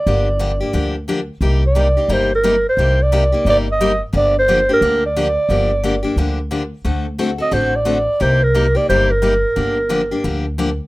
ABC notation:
X:1
M:4/4
L:1/16
Q:"Swing" 1/4=177
K:Gm
V:1 name="Clarinet"
d8- d2 z6 | z2 d6 c2 B4 c2- | c2 d6 d2 e4 z2 | d2 c4 B4 d6- |
d8- d2 z6 | z6 e2 c2 d6 | c2 B4 d2 c2 B6- | B8- B2 z6 |]
V:2 name="Steel-string acoustic guitar"
[D,F,B,DG]2 z2 [D,F,B,DG] z [B,DG]2 [D,F,B,DG]2 z2 [D,F,B,DG] z3 | [C,G,B,EG]2 z2 [C,G,B,EG] z [B,EG]2 [C,G,B,EG]2 z2 [C,G,B,EG] z3 | [C,G,B,EG]2 z2 [C,G,B,EG] z [B,EG]2 [C,G,B,EG]2 z2 [C,G,B,EG] z3 | [D,F,B,DG]2 z2 [D,F,B,DG] z [B,DG]2 [D,F,B,DG]2 z2 [D,F,B,DG] z3 |
[D,F,B,DG]2 z2 [D,F,B,DG] z [B,DG]2 [D,F,B,DG]2 z2 [D,F,B,DG] z3 | [D,A,C^FA]2 z2 [D,A,CFA] z [CFA]2 [D,A,CFA]2 z2 [D,A,CFA] z3 | [C,G,B,EG]2 z2 [C,G,B,EG] z [B,EG]2 [C,G,B,EG]2 z2 [C,G,B,EG] z3 | [D,F,B,DG]2 z2 [D,F,B,DG] z [B,DG]2 [D,F,B,DG]2 z2 [D,F,B,DG] z3 |]
V:3 name="Upright bass" clef=bass
G,,,8 D,,8 | C,,8 G,,,8 | C,,8 G,,,8 | G,,,8 D,,8 |
G,,,8 D,,8 | D,,8 A,,,8 | C,,8 G,,,8 | G,,,8 D,,8 |]